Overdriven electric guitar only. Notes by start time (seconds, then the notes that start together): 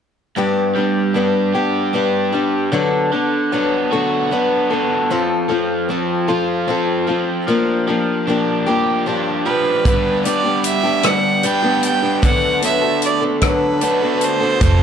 0.36 G2
0.75 G3
1.15 D4
1.55 G4
1.94 D4
2.34 G3
2.73 D3
3.12 D3
3.52 B3
3.92 F#4
4.32 B3
4.71 D3
5.11 F2
5.50 F3
5.90 C4
6.29 F4
6.68 C4
7.08 F3
7.48 F3
7.88 F3
8.27 D4
8.68 G4
9.07 D4
9.46 F3
9.86 G3 B3 D4 B4
11.44 G3 B3 D4 B4
12.23 D3 D4 F#4 A4
13.81 D3 D4 F#4 A4
14.61 F3 A3 C4 F4 A4